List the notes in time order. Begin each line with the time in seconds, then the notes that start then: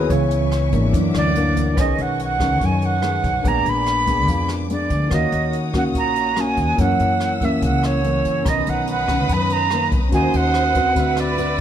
Already playing: A#3 B3 E4 F#4 G#4 A#4 B4 C#5 G#5
0.09 C#2 C#3 E3 B3 B4 C#5 E5 C#6, kick, closed hi-hat
0.31 closed hi-hat
0.52 cross-stick, closed hi-hat
0.72 G#1 E3 A#3 D4, kick, closed hi-hat
0.92 F#2 E3 A#3 D4 A#4 F#5 D6, kick, closed hi-hat
1.14 D2 D5, cross-stick, closed hi-hat
1.35 E3 A#3 D4, closed hi-hat
1.56 kick, closed hi-hat
1.74 B1 B2 D#3 D#4 B4 C#5 D#5 G#5 C#6, kick, cross-stick, closed hi-hat
1.78 G#3 C#4 D#5 G#5
1.98 B1 F#5, closed hi-hat
2.19 closed hi-hat
2.24 F#5
2.40 D#3 G#3 C#4, kick, cross-stick, closed hi-hat
2.61 F#2, kick, closed hi-hat
2.65 G#5
2.82 F#5, closed hi-hat
3.01 D#3 G#3 C#4 D#4 B4 C#5 F#5, cross-stick, closed hi-hat
3.23 B1, kick, closed hi-hat
3.42 A#1 A#2 G#3 B3 D4 A#4 B4 D6, kick, closed hi-hat
3.47 G#5 A#5
3.65 A#1 B5, closed hi-hat
3.86 cross-stick, closed hi-hat
4.06 G#3 B3 D4, kick, closed hi-hat
4.28 F2 F3, kick, closed hi-hat
4.48 cross-stick, closed hi-hat
4.70 G#3 B3 D4 D5, closed hi-hat
4.90 D2, kick, closed hi-hat
5.08 D#2 D#3 A#3 D#4 A#4 C#5 F#5 D#6, kick, cross-stick, closed hi-hat
5.12 C#4 F#4 C#5 D#5 F#5
5.32 D#2, closed hi-hat
5.53 closed hi-hat
5.74 A#3 C#4 F#4 F#5, kick, cross-stick, closed hi-hat
5.95 A#1 A#2 A#5, kick, closed hi-hat
6.16 closed hi-hat
6.36 A#3 C#4 F#4, cross-stick, closed hi-hat
6.41 G#5
6.57 D#2, kick, closed hi-hat
6.75 F#2 E3 A#3 C#4 E4 A#4 C#5 E6, kick, closed hi-hat
6.80 C#4 F#5
6.99 F#2, closed hi-hat
7.20 cross-stick, closed hi-hat
7.41 E3 A#3 C#4 E5, kick, closed hi-hat
7.62 C#2 C#3 F#5, kick, closed hi-hat
7.83 C#5, cross-stick, closed hi-hat
8.04 E3 A#3 C#4, closed hi-hat
8.25 F#2, closed hi-hat
8.43 B1 B2 D#3 B3 C#4 B4 A#5 D#6, kick, cross-stick, closed hi-hat
8.47 C#4 D#5
8.66 B1 F#5, closed hi-hat
8.87 F#5, closed hi-hat
9.08 D#3 C#4, kick, cross-stick, closed hi-hat
9.29 F#2, kick, closed hi-hat
9.33 B5
9.50 A#5, closed hi-hat
9.70 D#3 A#3 C#4, cross-stick, closed hi-hat
9.92 B1, kick, closed hi-hat
10.09 D#2 D#3 C#4 F#4, kick, closed hi-hat
10.13 A#3 C#4 F#4 A#4 C5 D#5 F#5 G#5 D#6
10.33 D#2 F#5, closed hi-hat
10.54 cross-stick, closed hi-hat
10.75 C4 F#4 B4, kick, closed hi-hat
10.94 D2 D3 C4 F#4 B4 F#5 E6, kick, closed hi-hat
10.98 B4 E5
11.16 D5, cross-stick, closed hi-hat
11.37 C4 F#4 B4, closed hi-hat